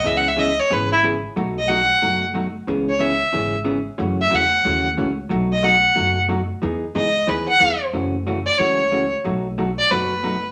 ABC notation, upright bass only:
X:1
M:4/4
L:1/8
Q:"Swing" 1/4=183
K:F#dor
V:1 name="Upright bass" clef=bass
C,,4 G,,,4 | B,,,4 F,,,4 | C,,4 G,,,4 | F,,2 E,,2 D,,2 C,,2 |
B,,,4 F,,,4 | E,,2 C,,2 D,,2 E,,2 | F,,,4 C,,4 | B,,,4 F,,,4 |]